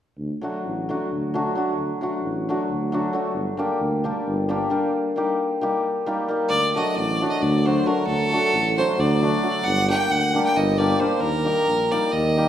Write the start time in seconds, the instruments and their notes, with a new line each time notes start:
0.18 tuba D2
0.41 hammered dulcimer F#3 A3 D4 F#4
0.65 tuba A1
0.89 hammered dulcimer F#3 A3 D4 F#4
1.11 tuba D2
1.34 hammered dulcimer F#3 A3 D4 F#4
1.55 hammered dulcimer F#3 A3 D4 F#4
1.76 tuba D2
2.01 hammered dulcimer F#3 A3 D4 F#4
2.22 tuba A1
2.49 hammered dulcimer F#3 A3 D4 F#4
2.69 tuba D2
2.92 hammered dulcimer F#3 A3 D4 F#4
3.13 hammered dulcimer F#3 A3 D4 F#4
3.34 tuba G1
3.57 hammered dulcimer G3 A#3 D4 G4
3.81 tuba D2
4.04 hammered dulcimer G3 A#3 D4 G4
4.27 tuba G1
4.49 hammered dulcimer G3 A#3 D4 G4
4.70 hammered dulcimer G3 A#3 D4 G4
5.16 hammered dulcimer G3 A#3 D#4 G4
5.61 hammered dulcimer G3 A#3 D#4 G4
6.06 hammered dulcimer G3 A#3 D#4 G4
6.28 hammered dulcimer G3 A#3 D#4 G4
6.49 tuba D2, fiddle D5
6.75 hammered dulcimer F#3 A3 D4 F#4, fiddle D#5
6.96 tuba A1, fiddle D5
7.21 hammered dulcimer F#3 A3 D4 F#4
7.30 fiddle D#5
7.42 tuba D2, fiddle D5
7.65 hammered dulcimer F#3 A3 D4 F#4, fiddle C5
7.86 hammered dulcimer F#3 A3 D4 F#4, fiddle A#4
8.07 tuba D2, fiddle A4
8.32 hammered dulcimer F#3 A3 D4 F#4
8.53 tuba A1
8.78 hammered dulcimer F#3 A3 D4 F#4, fiddle C5
8.99 tuba D2, fiddle D5
9.22 hammered dulcimer F#3 A3 D4 F#4
9.43 hammered dulcimer F#3 A3 D4 F#4
9.63 tuba G1, fiddle F#5
9.88 hammered dulcimer G3 A#3 D4 G4, fiddle G5
10.10 tuba D2, fiddle F#5
10.34 hammered dulcimer G3 A#3 D4 G4
10.46 fiddle G5
10.56 tuba G1, fiddle D#5
10.78 hammered dulcimer G3 A#3 D4 G4, fiddle D5
10.99 hammered dulcimer G3 A#3 D4 G4, fiddle C5
11.20 tuba D#2, fiddle A#4
11.44 hammered dulcimer G3 A#3 D#4 G4
11.67 tuba A#1
11.91 hammered dulcimer G3 A#3 D#4 G4, fiddle D5
12.12 tuba D#2, fiddle D#5
12.37 hammered dulcimer G3 A#3 D#4 G4